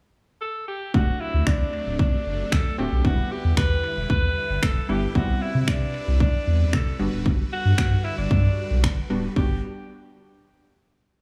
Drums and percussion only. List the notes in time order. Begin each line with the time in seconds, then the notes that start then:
0.94 kick
1.47 finger snap, kick
1.99 kick
2.52 finger snap, kick
3.05 kick
3.57 finger snap, kick
4.10 kick
4.63 finger snap, kick
5.15 kick
5.68 finger snap, kick
6.20 kick
6.73 finger snap, kick
7.26 kick
7.78 finger snap, kick
8.31 kick
8.84 finger snap, kick
9.36 kick